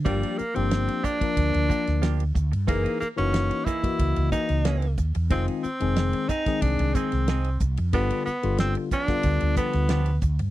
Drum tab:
RD |xx-xxx-xxx-xxx-x|xx-xxx-xxx-xxx-x|xx-xxx-xxx-xxx-x|xx-xxx-xxx-xxx-x|
HH |--p---p---p---p-|--p---p---p---p-|--p---p---p---p-|--p---p---p---p-|
SD |----o------oo---|----o------oo---|----o--o---oo---|----o--o---oo---|
BD |o-----ooo-o---o-|o-----ooo-o---o-|o-----ooo-o---o-|o-----ooo-o---o-|